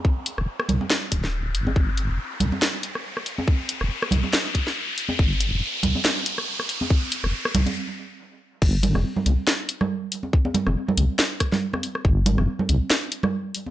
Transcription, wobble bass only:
X:1
M:4/4
L:1/16
Q:"Swing 16ths" 1/4=140
K:Cdor
V:1 name="Wobble bass" clef=bass
z3 F,,, z2 C,, z3 D,,,4 G,,,2 | G,,,3 F,,, z2 C,, z8 z | z3 F,,, z2 C,, z8 z | G,,,3 F,,, z2 C,, z8 z |
z3 F,,, z2 C,, z8 z | G,,,3 F,,, z2 C,, z8 z | z3 F,,, z2 C,, z8 z | G,,,3 F,,, z2 C,, z8 z |]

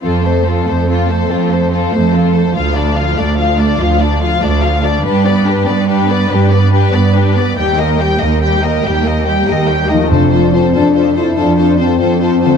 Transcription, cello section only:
X:1
M:12/8
L:1/8
Q:3/8=95
K:Flyd
V:1 name="Cello section" clef=bass
F,,3 F,,3 F,,3 F,,3 | D,,3 D,,3 D,,3 D,,3 | G,,3 G,,3 G,,3 G,,3 | _E,,3 E,,3 E,,3 E,,3 |
F,,3 F,,3 F,,3 F,,3 |]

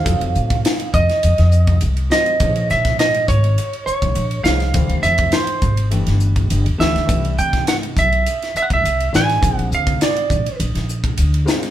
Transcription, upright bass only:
X:1
M:4/4
L:1/16
Q:1/4=103
K:Bbm
V:1 name="Upright bass" clef=bass
F,, F,, =A,,2 z2 F,, z F,, F,,3 C,,2 z2 | B,,,2 B,,4 A,,,2 z3 B,,, B,,,2 C,,2 | =D,, D,, F,,2 z2 A,,,2 =G,,, G,,,3 G,,, =E,, D,, _D,, | C,,2 C,4 =B,,,2 z3 C,, C,,2 =A,,,2 |
B,,, B,,, =D,,2 z2 B,,, z B,,, B,,,3 D,,2 z2 |]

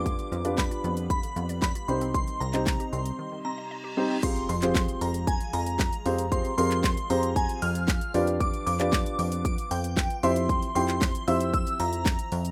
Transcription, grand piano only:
X:1
M:4/4
L:1/16
Q:1/4=115
K:Fm
V:1 name="Grand piano"
[=DFG=B]2 z [DFGB]6 z4 z [CEGc]2- | [CEGc]2 z [CEGc]6 z4 z [CEGc] z | [CFGAc]2 z [CFGAc]6 z4 z [CFGAc] z | [CFGAc] z [CFGAB]3 z [CFGAc]6 z2 [=DFG=B=d]2- |
[=DFG=B=d]2 z [DFGBd]6 z4 z [C=EGc=e]2- | [C=EGc=e] z [CEGcg]3 z [CEGce]6 z4 |]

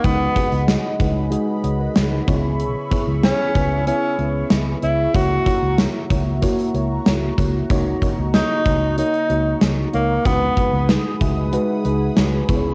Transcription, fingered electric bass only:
X:1
M:4/4
L:1/16
Q:1/4=94
K:G#m
V:1 name="Fingered electric bass" clef=bass
C,,2 z C,,2 z C,,3 z C,,2 C,,2 C,,2- | C,,2 z C,,2 z C,,3 z C,,2 C,,2 C,,2 | C,,2 z C,,2 z C,,3 z C,,2 C,,2 C,,2 | C,,2 z C,,2 z C,,3 z C,,2 C,,2 C,,2 |
C,,2 z C,,2 z C,,3 z C,,2 C,,2 C,,2 |]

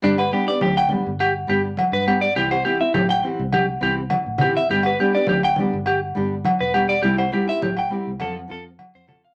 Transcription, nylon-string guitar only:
X:1
M:4/4
L:1/16
Q:1/4=103
K:Gmix
V:1 name="Nylon-string guitar"
[G,DG] z [G,B,DG] [B,DG] z2 [G,B,DG] z3 [G,B,DG] z3 [G,B,DG] z | [E,CEG] z [E,CEG] [CE] z2 [E,CEG] z3 [E,CEG] z3 [E,CEG] z | [G,B,DG] z [G,B,DG] [B,DG] z2 [G,B,DG] z3 [G,B,DG] z3 [G,B,DG] z | [G,CEG] z [G,CEG] [CEG] z2 [G,CEG] z [F,CFA] z [F,CFA] z3 [F,CFA] z |]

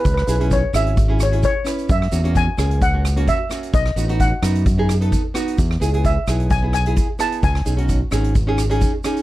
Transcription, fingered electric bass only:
X:1
M:4/4
L:1/8
Q:"Swing 16ths" 1/4=130
K:C#m
V:1 name="Fingered electric bass" clef=bass
C,, B,,,2 G,,,4 z | F,, E,,2 C,,4 z | B,,, A,,,2 F,,4 z | E,, C,,2 B,,,4 z |
C,, B,,,2 G,,,4 z |]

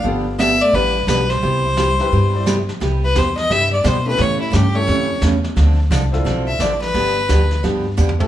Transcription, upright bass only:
X:1
M:4/4
L:1/8
Q:"Swing" 1/4=174
K:C
V:1 name="Upright bass" clef=bass
G,,,4 A,,,2 B,,,2 | C,,4 G,,4 | C,,2 E,,2 G,,2 B,,2 | A,,2 G,,2 F,,2 E,,2 |
D,,2 C,,2 B,,,2 A,,,2 | G,,,2 D,,2 G,,2 E,,2 |]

